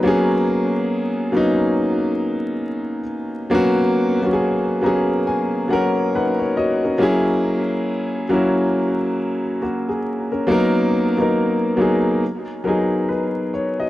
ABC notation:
X:1
M:4/4
L:1/16
Q:"Swing 16ths" 1/4=69
K:G#m
V:1 name="Upright piano"
z16 | z6 a2 g2 f2 [DBf] c [Fcd] [CA]- | [CA] z8 z3 [A,F] G2 [CA]- | [CA] z8 z3 [DB]2 c [Fd] |]
V:2 name="Upright piano"
[F,A,B,CG]6 [F,A,B,CD]8 z2 | [F,A,B,CF]3 [F,A,B,CFG]3 [F,A,B,CG]4 [F,A,B,CA]6 | [F,A,CEG]6 [F,A,CEF]8 z2 | [F,A,B,DA]3 [F,A,B,DA]3 [F,A,B,DG]2 z2 [F,B,DGA]6 |]